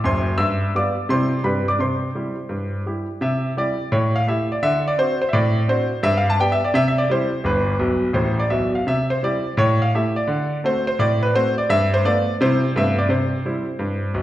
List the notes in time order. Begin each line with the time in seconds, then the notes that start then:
0.04 F#1 F#2 C5 C6
0.38 G2 E5 E6
0.75 G3 B3 F4 D5 D6
1.09 C3 G3 C4 E4 C5 C6
1.44 G2 G3 D4 G4 B4 B5
1.68 D5 D6
1.79 C3 C5 C6
2.15 G3 E4 G4
2.49 G2
2.86 G3 E4 G4
3.21 C3 E5
3.57 G3 E4 G4 D5
3.92 A2 C#5
4.16 F5
4.27 A3 E4 G4 E5
4.52 D5
4.63 D3 E5
4.88 D5
4.98 C4 D4 F#4 C5
5.22 C5
5.29 E5
5.33 A2 D5
5.68 C4 D4 F#4 C5
6.03 G2 E5
6.17 F5
6.30 A5
6.39 B3 D4 G4 G5
6.52 E5
6.64 D5
6.74 C3 E5
6.88 E5
6.98 D5
7.10 G3 E4 G4 C5
7.44 G1 G2 B4
7.79 B1 B2
8.13 A1 A2 C5
8.39 D5
8.50 B1 B2 E5
8.75 F5
8.87 C3 E5
9.10 C5
9.23 G3 E4 G4 D5
9.57 A2 C#5
9.82 F5
9.94 A3 E4 G4 E5
10.16 D5
10.27 D3
10.64 A3 C4 F#4 C5
10.87 C5
10.99 A2 D5
11.23 B4
11.34 A3 C4 F#4 C5
11.58 D5
11.70 G2 E5
11.94 C5
12.05 A3 B3 F4 D5
12.41 C3 G3 C4 E4 C5
12.76 G2 A3 B3 F4 E5
12.98 D5
13.09 C3 C5
13.46 G3 C4 E4
13.79 G2
14.14 B1 B2